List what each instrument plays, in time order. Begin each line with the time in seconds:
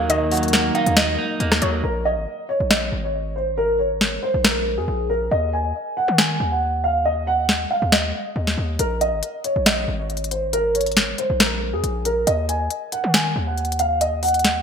Already playing: 808-style bass D#2, clean electric guitar F#3 A#3 D#4 D#5, analog synth pad F#3 A#3 D#4 A#4
0.10 clean electric guitar D#3, grand piano D#5, synth pluck D#5, closed hi-hat
0.31 clean electric guitar F#3, grand piano F#5, closed hi-hat, open hi-hat
0.37 closed hi-hat
0.43 closed hi-hat
0.48 closed hi-hat
0.53 clean electric guitar A#3, snare, closed hi-hat
0.75 clean electric guitar D#4, grand piano F5, closed hi-hat
0.86 808-style bass D#2, closed hi-hat
0.97 clean electric guitar D#5, grand piano D#5, snare, closed hi-hat
1.18 clean electric guitar D#4
1.40 808-style bass D#2, clean electric guitar A#3, closed hi-hat
1.52 cross-stick, snare
1.62 808-style bass D#2, clean electric guitar F#3, synth pluck C#5, closed hi-hat
1.84 808-style bass A#1, grand piano A#4
2.05 grand piano D#5
2.17 808-style bass G#1
2.49 grand piano C#5
2.60 808-style bass A#1
2.71 grand piano D#5, snare
2.92 808-style bass G#1
3.04 grand piano C#5
3.36 grand piano C5
3.58 grand piano A#4
3.79 grand piano C#5
4.01 snare
4.23 grand piano C5
4.34 808-style bass A#1
4.44 grand piano A#4, snare
4.78 808-style bass F2, grand piano G#4
4.88 808-style bass A#1
5.10 grand piano A#4
5.31 808-style bass D#2, grand piano D#5
5.53 grand piano G#5
5.97 grand piano F#5
6.08 808-style bass D#3
6.18 grand piano G#5, snare
6.40 808-style bass D#2
6.52 grand piano F#5
6.84 grand piano F5
7.05 grand piano D#5
7.27 grand piano F#5
7.49 snare
7.71 grand piano F5
7.82 808-style bass D#2
7.92 grand piano D#5, snare
8.36 808-style bass D#2
8.47 snare
8.58 808-style bass D#2
8.79 808-style bass A#1, grand piano A#4, closed hi-hat
9.01 grand piano D#5, closed hi-hat
9.12 808-style bass G#1
9.23 closed hi-hat
9.44 grand piano C#5, closed hi-hat
9.56 808-style bass A#1
9.66 grand piano D#5, snare, closed hi-hat
9.88 808-style bass G#1
9.99 grand piano C#5
10.10 closed hi-hat
10.17 closed hi-hat
10.24 closed hi-hat
10.31 grand piano C5, closed hi-hat
10.53 grand piano A#4, closed hi-hat
10.75 grand piano C#5, closed hi-hat
10.81 closed hi-hat
10.86 closed hi-hat
10.92 closed hi-hat
10.97 snare, closed hi-hat
11.18 grand piano C5, closed hi-hat
11.30 808-style bass A#1
11.40 grand piano A#4, snare, closed hi-hat
11.73 808-style bass F2, grand piano G#4
11.84 808-style bass A#1, closed hi-hat
12.05 grand piano A#4, closed hi-hat
12.27 808-style bass D#2, grand piano D#5, closed hi-hat
12.49 grand piano G#5, closed hi-hat
12.70 closed hi-hat
12.92 grand piano F#5, closed hi-hat
13.04 808-style bass D#3
13.14 grand piano G#5, snare, closed hi-hat
13.36 808-style bass D#2
13.47 grand piano F#5
13.58 closed hi-hat
13.65 closed hi-hat
13.72 closed hi-hat
13.79 grand piano F5, closed hi-hat
14.01 grand piano D#5, closed hi-hat
14.23 grand piano F#5, closed hi-hat, open hi-hat
14.28 closed hi-hat
14.34 closed hi-hat
14.39 closed hi-hat
14.44 snare, closed hi-hat